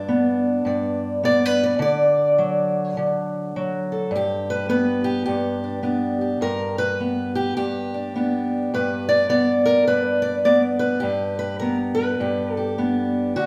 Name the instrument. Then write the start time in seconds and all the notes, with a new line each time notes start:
steel-string acoustic guitar
Already playing: G2 D4
0.09 B3
0.65 G2 D5
1.23 B3 D5
1.45 B4
1.64 D5
1.79 D3 D5
2.38 F#3
2.97 D3
3.56 F#3
3.92 A4
4.11 G2
4.16 G4
4.50 B4
4.69 B3 B4
5.04 G4
5.26 G2 G4
5.64 D4
5.83 B3 D4
6.21 G4
6.41 G2 A#4
6.78 B4
7.00 B3
7.35 G4
7.57 G2 G4
7.94 D4
8.16 B3 D4
8.74 G2 B4
9.09 D5
9.29 B3 D5
9.66 A#4
9.87 G2 B4
10.22 D5
10.45 B3 D5
10.79 B4
11.00 G2 G4
11.39 B4
11.60 B3 A#4
11.95 B4
12.20 G2 G4
12.53 A4
12.57 G4
12.78 B3 D4
13.36 D3 F#4